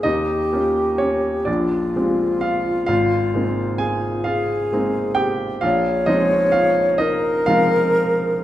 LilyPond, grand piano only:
<<
  \new Staff \with { instrumentName = "Grand piano" } { \time 6/8 \key aes \major \tempo 4. = 43 <ees' ees''>4 <des' des''>8 <d' d''>4 <f' f''>8 | <f' f''>4 <aes' aes''>8 <f' f''>4 <g' g''>8 | <f' f''>8 <ees' ees''>8 <f' f''>8 <ees' ees''>8 <f' f''>4 | }
  \new Staff \with { instrumentName = "Grand piano" } { \time 6/8 \key aes \major ees,8 <bes des' f' g'>4 bes,,8 <aes c' f' g'>4 | aes,,8 <aes bes c' ees'>4. <aes bes c' ees'>4 | bes,,8 <f aes c'>4. <f aes c' ees'>4 | }
>>